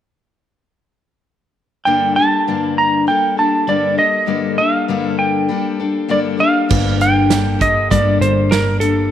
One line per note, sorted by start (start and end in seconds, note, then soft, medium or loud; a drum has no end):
1.85 2.17 G2 medium
1.85 2.17 D3 medium
1.85 2.17 G3 medium
1.85 2.17 A#3 medium
1.85 2.17 D4 medium
1.85 2.15 A4 medium
1.85 2.16 G5 medium
2.16 2.46 G3 soft
2.16 2.47 A#3 soft
2.16 2.48 D4 soft
2.16 2.47 A4 soft
2.16 2.78 A5 medium
2.47 3.08 G2 medium
2.47 3.08 D3 medium
2.47 3.07 G3 medium
2.47 3.07 A#3 medium
2.47 3.08 D4 medium
2.78 3.08 A#5 medium
3.07 3.37 G3 medium
3.07 3.38 A#3 medium
3.07 3.37 D4 soft
3.07 3.36 A4 medium
3.07 3.38 G5 medium
3.37 3.66 G3 soft
3.37 3.67 A#3 soft
3.37 3.67 D4 soft
3.37 3.68 A4 soft
3.37 3.69 A5 medium
3.67 3.98 G2 medium
3.67 3.98 D3 medium
3.67 3.98 G3 medium
3.67 3.98 A#3 medium
3.67 3.99 D4 medium
3.67 3.96 A4 medium
3.67 3.98 D5 medium
3.98 4.26 G3 soft
3.98 4.27 A#3 soft
3.98 4.27 A4 soft
3.98 4.61 D#5 medium
4.26 4.57 G2 medium
4.26 4.58 D3 medium
4.26 4.58 G3 medium
4.26 4.58 A#3 medium
4.26 4.57 A4 medium
4.58 4.88 G3 soft
4.58 4.89 A#3 soft
4.58 4.88 D4 soft
4.58 4.88 A4 soft
4.58 5.18 F5 medium
4.88 5.49 G2 medium
4.88 5.49 D3 medium
4.88 5.47 G3 medium
4.88 5.48 A#3 medium
4.88 5.49 D4 medium
4.88 5.50 A4 medium
5.19 6.35 G5 medium
5.49 5.79 G3 medium
5.49 5.79 A#3 medium
5.49 5.79 D4 medium
5.49 5.78 A4 medium
5.80 6.09 G3 soft
5.80 6.08 A#3 soft
5.80 6.09 D4 soft
5.80 6.09 A4 soft
6.08 6.39 G2 medium
6.08 6.39 D3 medium
6.08 6.39 G3 medium
6.08 6.38 A#3 medium
6.08 6.38 D4 medium
6.08 6.36 A4 medium
6.08 6.19 D5 medium
6.37 6.68 G3 soft
6.37 6.68 A#3 soft
6.37 6.69 D4 medium
6.37 6.69 A4 medium
6.37 6.96 F5 medium
6.69 7.87 G1 medium
6.69 7.29 G2 medium
6.69 7.30 D3 medium
6.69 7.29 G3 medium
6.69 7.29 A#3 medium
6.69 7.30 D4 medium
6.69 7.30 A4 medium
6.69 kick medium
6.69 crash medium
7.01 7.63 G5 medium
7.01 closed hi-hat soft
7.30 7.60 G3 soft
7.30 7.60 A#3 soft
7.30 7.61 D4 medium
7.30 7.58 A4 medium
7.30 snare medium
7.30 closed hi-hat medium
7.59 7.90 G3 soft
7.59 7.90 A#3 soft
7.59 7.90 A4 soft
7.59 7.91 D#5 medium
7.59 kick medium
7.59 closed hi-hat medium
7.90 8.19 G1 medium
7.90 8.51 G2 medium
7.90 8.51 D3 medium
7.90 8.49 G3 medium
7.90 8.49 A#3 medium
7.90 8.50 D4 medium
7.90 8.52 A4 medium
7.90 8.21 D5 medium
7.90 kick medium
7.90 closed hi-hat medium
8.21 9.07 G1 medium
8.21 8.52 C5 medium
8.21 closed hi-hat medium
8.49 8.80 G3 soft
8.49 8.81 A#3 soft
8.49 8.80 D4 medium
8.49 8.80 A#4 medium
8.49 snare medium
8.49 closed hi-hat medium
8.80 9.11 G3 soft
8.80 9.10 A#3 soft
8.80 9.11 D4 soft
8.80 9.11 A4 medium
8.80 9.11 A4 soft
8.80 closed hi-hat soft